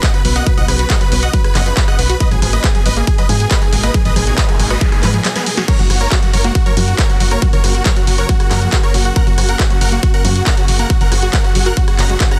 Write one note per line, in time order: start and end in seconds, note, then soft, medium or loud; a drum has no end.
0.00 2.16 C#3 medium
0.00 2.16 F#3 medium
0.00 2.17 B3 medium
0.00 2.16 F#4 medium
0.00 2.17 B4 medium
0.00 0.11 D#5 medium
0.00 0.11 F#5 loud
0.00 kick loud
0.00 clap loud
0.00 closed hi-hat medium
0.14 0.17 F#3 medium
0.14 0.22 B4 medium
0.14 closed hi-hat soft
0.25 0.42 B1 medium
0.25 0.28 F#3 medium
0.25 0.32 B4 medium
0.25 open hi-hat medium
0.36 0.43 A#3 loud
0.36 0.43 D#5 medium
0.36 0.43 F#5 medium
0.36 closed hi-hat soft
0.47 0.54 F#3 medium
0.47 0.54 B4 medium
0.47 kick loud
0.47 closed hi-hat medium
0.57 0.66 B1 loud
0.57 0.63 F3 medium
0.57 0.65 D#5 medium
0.57 0.65 F#5 medium
0.57 closed hi-hat soft
0.68 0.85 B1 medium
0.68 0.73 F3 medium
0.68 0.76 B4 medium
0.68 cross-stick medium
0.68 open hi-hat loud
0.79 0.84 F#4 medium
0.79 0.87 B4 medium
0.79 closed hi-hat soft
0.90 0.98 F#3 loud
0.90 0.98 D#5 medium
0.90 0.98 F#5 medium
0.90 kick loud
0.90 clap loud
0.90 closed hi-hat medium
1.01 1.04 F#3 medium
1.01 1.08 B4 medium
1.01 closed hi-hat soft
1.12 1.29 B1 medium
1.12 1.15 F#3 medium
1.12 1.19 B4 medium
1.12 open hi-hat loud
1.23 1.28 F#4 loud
1.23 1.30 D#5 medium
1.23 1.30 F#5 medium
1.23 closed hi-hat soft
1.33 1.41 F#3 medium
1.33 1.41 B4 medium
1.33 kick loud
1.33 closed hi-hat medium
1.44 1.52 B4 medium
1.44 cross-stick medium
1.44 closed hi-hat soft
1.55 1.72 F#1 loud
1.55 1.60 F3 medium
1.55 1.63 D#5 medium
1.55 1.63 F#5 loud
1.55 cross-stick medium
1.55 clap medium
1.55 open hi-hat loud
1.66 1.74 F3 medium
1.66 1.74 B4 medium
1.66 closed hi-hat soft
1.77 1.85 F#3 medium
1.77 1.85 B4 medium
1.77 kick loud
1.77 clap loud
1.77 closed hi-hat medium
1.88 1.95 D#5 medium
1.88 1.95 F#5 loud
1.88 cross-stick medium
1.88 closed hi-hat soft
1.99 2.16 B1 medium
1.99 2.02 F#3 medium
1.99 2.06 B4 medium
1.99 open hi-hat medium
2.10 2.15 F#4 loud
2.10 2.17 B4 medium
2.10 closed hi-hat soft
2.20 5.65 B2 medium
2.20 2.28 F#3 medium
2.20 5.65 G#3 medium
2.20 12.39 A#3 medium
2.20 5.65 D#4 medium
2.20 9.12 A#4 medium
2.20 2.28 B4 medium
2.20 2.28 D#5 loud
2.20 kick loud
2.20 closed hi-hat medium
2.31 2.40 G#1 loud
2.31 2.36 F#3 medium
2.31 2.39 G#4 medium
2.31 closed hi-hat soft
2.42 2.59 G#1 medium
2.42 2.47 F3 medium
2.42 2.50 G#4 medium
2.42 cross-stick medium
2.42 open hi-hat loud
2.53 2.58 A#3 medium
2.53 2.61 B4 medium
2.53 2.61 D#5 medium
2.53 closed hi-hat soft
2.64 2.67 F#4 medium
2.64 2.72 G#4 medium
2.64 kick loud
2.64 clap loud
2.64 closed hi-hat medium
2.75 2.78 F#3 medium
2.75 2.82 G#4 medium
2.75 closed hi-hat soft
2.86 3.02 G#1 medium
2.86 2.89 F#3 medium
2.86 2.93 B4 medium
2.86 2.93 D#5 loud
2.86 open hi-hat medium
2.97 3.04 A#3 loud
2.97 3.04 G#4 medium
2.97 closed hi-hat soft
3.07 3.15 G#4 medium
3.07 kick loud
3.07 closed hi-hat medium
3.18 3.23 F#3 medium
3.18 3.26 B4 medium
3.18 3.26 D#5 medium
3.18 closed hi-hat soft
3.29 3.46 G#2 loud
3.29 3.34 F3 medium
3.29 3.37 G#4 medium
3.29 open hi-hat loud
3.40 3.48 G#4 medium
3.40 closed hi-hat soft
3.51 3.59 B4 medium
3.51 3.58 D#5 loud
3.51 kick loud
3.51 clap loud
3.51 closed hi-hat medium
3.62 3.65 F#3 medium
3.62 3.69 G#4 medium
3.62 closed hi-hat soft
3.73 3.89 G#1 medium
3.73 3.76 F#3 medium
3.73 3.80 G#4 medium
3.73 open hi-hat medium
3.83 3.91 A#3 loud
3.83 3.91 B4 medium
3.83 3.91 D#5 medium
3.83 closed hi-hat soft
3.94 4.02 F#3 medium
3.94 4.02 G#4 medium
3.94 kick loud
3.94 closed hi-hat medium
3.94 noise sweep medium
4.05 4.14 G#1 loud
4.05 4.10 F3 medium
4.05 4.13 B4 medium
4.05 4.13 D#5 loud
4.05 closed hi-hat soft
4.16 4.33 G#1 medium
4.16 4.21 F3 medium
4.16 4.24 G#4 medium
4.16 cross-stick medium
4.16 open hi-hat loud
4.27 4.32 F#4 medium
4.27 4.35 G#4 medium
4.27 closed hi-hat soft
4.38 4.46 F#3 loud
4.38 4.45 B4 medium
4.38 4.45 D#5 medium
4.38 kick loud
4.38 clap loud
4.38 closed hi-hat medium
4.49 4.52 F#3 medium
4.49 4.56 G#4 medium
4.49 closed hi-hat soft
4.59 4.76 G#1 medium
4.59 4.63 F#3 medium
4.59 4.67 G#4 medium
4.59 open hi-hat medium
4.70 4.76 F#4 loud
4.70 4.78 B4 medium
4.70 4.78 D#5 medium
4.70 closed hi-hat soft
4.81 4.89 F#3 medium
4.81 4.89 G#4 medium
4.81 kick loud
4.81 closed hi-hat medium
4.92 5.00 G#4 medium
4.92 cross-stick medium
4.92 closed hi-hat soft
5.03 5.20 G#2 loud
5.03 5.08 F3 medium
5.03 5.11 G#4 medium
5.03 5.11 B4 medium
5.03 cross-stick medium
5.03 clap medium
5.03 open hi-hat loud
5.14 5.22 F3 medium
5.14 5.21 G#4 medium
5.14 closed hi-hat soft
5.25 5.32 F#3 medium
5.25 5.32 G#4 medium
5.25 snare medium
5.25 clap loud
5.25 closed hi-hat medium
5.36 5.43 B3 medium
5.36 5.43 G#4 loud
5.36 snare medium
5.36 closed hi-hat soft
5.46 5.50 F#3 medium
5.46 5.54 G#4 medium
5.46 open hi-hat medium
5.57 5.62 F#4 loud
5.57 5.65 G#4 medium
5.57 snare medium
5.57 closed hi-hat soft
5.68 12.39 C#3 medium
5.68 5.76 F#3 medium
5.68 12.39 F#3 medium
5.68 12.39 F#4 medium
5.68 5.76 A#4 medium
5.68 5.76 C#5 loud
5.68 kick loud
5.68 closed hi-hat medium
5.68 crash medium
5.79 5.88 F#1 loud
5.79 5.84 F#3 medium
5.79 5.87 F#4 medium
5.79 closed hi-hat soft
5.90 6.07 F#1 medium
5.90 5.95 F3 medium
5.90 5.98 F#4 medium
5.90 cross-stick medium
5.90 open hi-hat loud
6.01 6.06 A#3 medium
6.01 6.08 A#4 medium
6.01 6.08 C#5 medium
6.01 closed hi-hat soft
6.12 6.19 F#4 medium
6.12 6.15 F#4 medium
6.12 kick loud
6.12 clap loud
6.12 closed hi-hat medium
6.22 6.26 F#3 medium
6.22 6.30 F#4 medium
6.22 closed hi-hat soft
6.33 6.50 F#1 medium
6.33 6.37 F#3 medium
6.33 6.41 A#4 medium
6.33 6.41 C#5 loud
6.33 open hi-hat loud
6.44 6.52 A#3 loud
6.44 6.52 F#4 medium
6.44 closed hi-hat soft
6.55 6.63 F#4 medium
6.55 kick loud
6.55 closed hi-hat medium
6.66 6.71 F#3 medium
6.66 6.74 A#4 medium
6.66 6.74 C#5 medium
6.66 closed hi-hat soft
6.77 6.94 F#2 loud
6.77 6.82 F3 medium
6.77 6.85 F#4 medium
6.77 open hi-hat loud
6.88 6.95 F#4 medium
6.88 closed hi-hat soft
6.99 7.06 A#4 medium
6.99 7.06 C#5 loud
6.99 kick loud
6.99 clap loud
6.99 closed hi-hat medium
7.09 7.13 F#3 medium
7.09 7.17 F#4 medium
7.09 closed hi-hat soft
7.20 7.37 F#1 medium
7.20 7.23 F#3 medium
7.20 7.28 F#4 medium
7.20 open hi-hat medium
7.31 7.39 A#3 loud
7.31 7.39 A#4 medium
7.31 7.39 C#5 medium
7.31 closed hi-hat soft
7.42 7.50 F#3 medium
7.42 7.50 F#4 medium
7.42 kick loud
7.42 closed hi-hat medium
7.53 7.61 F#1 loud
7.53 7.58 F3 medium
7.53 7.61 A#4 medium
7.53 7.61 C#5 medium
7.53 closed hi-hat soft
7.64 7.81 F#1 medium
7.64 7.69 F3 medium
7.64 7.72 F#4 medium
7.64 cross-stick medium
7.64 open hi-hat loud
7.75 7.80 F#4 medium
7.75 7.82 F#4 medium
7.75 closed hi-hat soft
7.86 7.93 F#3 loud
7.86 7.93 A#4 medium
7.86 7.93 C#5 medium
7.86 kick loud
7.86 clap loud
7.86 closed hi-hat medium
7.96 8.00 F#3 medium
7.96 8.04 F#4 medium
7.96 closed hi-hat soft
8.07 8.24 F#1 medium
8.07 8.10 F#3 medium
8.07 8.15 F#4 medium
8.07 open hi-hat loud
8.18 8.23 F#4 loud
8.18 8.26 A#4 medium
8.18 8.26 C#5 medium
8.18 closed hi-hat soft
8.29 8.37 F#3 medium
8.29 8.37 F#4 medium
8.29 kick loud
8.29 closed hi-hat medium
8.40 8.48 F#4 medium
8.40 cross-stick medium
8.40 closed hi-hat soft
8.51 8.68 F#2 loud
8.51 8.56 F3 medium
8.51 8.59 F#4 medium
8.51 8.59 A#4 loud
8.51 cross-stick medium
8.51 clap medium
8.51 open hi-hat loud
8.62 8.69 F3 medium
8.62 8.69 F#4 medium
8.62 closed hi-hat soft
8.73 8.80 F#3 medium
8.73 8.80 F#4 medium
8.73 kick loud
8.73 clap loud
8.73 closed hi-hat medium
8.83 8.91 A#4 medium
8.83 8.91 C#5 loud
8.83 cross-stick medium
8.83 closed hi-hat soft
8.94 9.11 F#1 medium
8.94 8.97 F#3 medium
8.94 9.02 F#4 medium
8.94 open hi-hat loud
9.05 9.10 F#4 loud
9.05 9.13 F#4 medium
9.05 closed hi-hat soft
9.16 9.24 F#3 medium
9.16 12.39 G#4 medium
9.16 9.24 A#4 medium
9.16 9.24 F#5 loud
9.16 kick loud
9.16 closed hi-hat medium
9.27 9.35 F#1 loud
9.27 9.32 F#3 medium
9.27 9.35 F#4 medium
9.27 closed hi-hat soft
9.38 9.55 F#1 medium
9.38 9.43 F3 medium
9.38 9.45 F#4 medium
9.38 cross-stick medium
9.38 open hi-hat loud
9.49 9.54 A#3 medium
9.49 9.56 A#4 medium
9.49 9.56 F#5 medium
9.49 closed hi-hat soft
9.60 9.63 F#4 medium
9.60 9.67 F#4 medium
9.60 kick loud
9.60 clap loud
9.60 closed hi-hat medium
9.70 9.73 F#3 medium
9.70 9.78 F#4 medium
9.70 closed hi-hat soft
9.81 9.98 F#1 medium
9.81 9.84 F#3 medium
9.81 9.89 A#4 medium
9.81 9.89 F#5 loud
9.81 open hi-hat loud
9.92 10.00 A#3 loud
9.92 10.00 F#4 medium
9.92 closed hi-hat soft
10.03 10.10 F#4 medium
10.03 kick loud
10.03 closed hi-hat medium
10.14 10.19 F#3 medium
10.14 10.21 A#4 medium
10.14 10.21 F#5 medium
10.14 closed hi-hat soft
10.25 10.42 F#2 loud
10.25 10.30 F3 medium
10.25 10.32 F#4 medium
10.25 open hi-hat loud
10.36 10.43 F#4 medium
10.36 closed hi-hat soft
10.46 10.54 A#4 medium
10.46 10.54 F#5 loud
10.46 kick loud
10.46 clap loud
10.46 closed hi-hat medium
10.57 10.60 F#3 medium
10.57 10.65 F#4 medium
10.57 closed hi-hat soft
10.68 10.85 F#1 medium
10.68 10.71 F#3 medium
10.68 10.76 F#4 medium
10.68 open hi-hat loud
10.79 10.87 A#3 loud
10.79 10.87 A#4 medium
10.79 10.87 F#5 medium
10.79 closed hi-hat soft
10.90 10.98 F#3 medium
10.90 10.98 F#4 medium
10.90 kick loud
10.90 closed hi-hat medium
11.01 11.09 F#1 loud
11.01 11.06 F3 medium
11.01 11.09 A#4 medium
11.01 11.09 F#5 medium
11.01 closed hi-hat soft
11.12 11.29 F#1 loud
11.12 11.17 F3 medium
11.12 11.19 F#4 medium
11.12 cross-stick medium
11.12 open hi-hat loud
11.22 11.30 F#4 medium
11.22 11.28 F#4 medium
11.22 closed hi-hat soft
11.33 11.41 F#3 loud
11.33 11.41 A#4 medium
11.33 11.41 F#5 medium
11.33 kick loud
11.33 clap loud
11.33 closed hi-hat medium
11.44 11.47 F#3 medium
11.44 11.52 F#4 medium
11.44 closed hi-hat soft
11.55 11.72 F#1 medium
11.55 11.58 F#3 medium
11.55 11.63 F#4 medium
11.55 open hi-hat loud
11.66 11.71 F#4 loud
11.66 11.74 A#4 medium
11.66 11.74 F#5 medium
11.77 11.85 F#3 medium
11.77 11.85 F#4 medium
11.77 kick loud
11.77 closed hi-hat medium
11.88 11.95 F#4 medium
11.88 cross-stick medium
11.88 closed hi-hat soft
11.99 12.16 F#1 medium
11.99 12.04 F#3 medium
11.99 12.06 F#5 medium
11.99 12.06 A#5 loud
11.99 cross-stick medium
11.99 clap medium
11.99 open hi-hat loud
12.10 12.15 G#3 medium
12.10 12.17 F#4 medium
12.10 closed hi-hat soft
12.20 12.26 F#2 medium
12.20 12.28 F#4 medium
12.20 kick loud
12.20 clap loud
12.20 closed hi-hat medium
12.31 12.36 C#4 medium
12.31 12.39 F#5 medium
12.31 12.39 A#5 loud
12.31 cross-stick medium
12.31 closed hi-hat soft